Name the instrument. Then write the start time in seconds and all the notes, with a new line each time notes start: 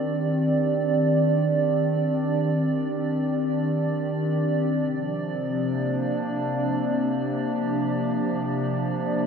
ambient pad
Already playing: D#3 C4 D4 G4 D5
4.80 C3
4.91 F3
5.56 D4
5.66 A#3
7.10 G4